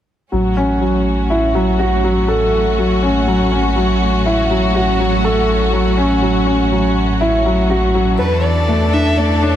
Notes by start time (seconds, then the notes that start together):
0.32 A1 F#3 A3 C#4 F#4
0.57 C#4
0.81 F#3
1.30 E4
1.55 F#3
1.79 F#4
2.04 F#3
2.28 A4
2.78 F#3
3.02 C#4
3.27 F#3
3.52 C#4
3.76 F#3
4.26 E4
4.50 F#3
4.75 F#4
5.00 F#3
5.24 A4
5.73 F#3
5.97 C#4
6.22 F#3
6.47 C#4
6.71 F#3
7.21 E4
7.46 F#3
7.70 F#4
7.95 F#3
8.19 E2 E3 D4 A4 B4
8.44 D5
8.68 A3
8.93 D4 E5
9.17 A3 D5
9.42 D4 C#5